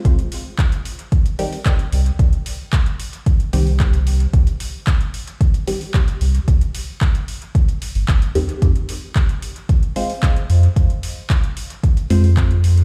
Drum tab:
HH |xxo-xxoxxxooxxox|xxo-xxoxxxooxxox|xxo-xxoxxxooxxox|xxo-xxoxxxooxxox|
CP |----x-------x---|----x-------x---|----x-------x---|----x-------x---|
BD |o---o---o---o---|o---o---o---o---|o---o---o---o---|o---o---o---o---|

HH |xxo-xxoxxxooxxox|xxo-xxoxxxooxxox|
CP |----x-------x---|----x-------x---|
BD |o---o---o---o---|o---o---o---o---|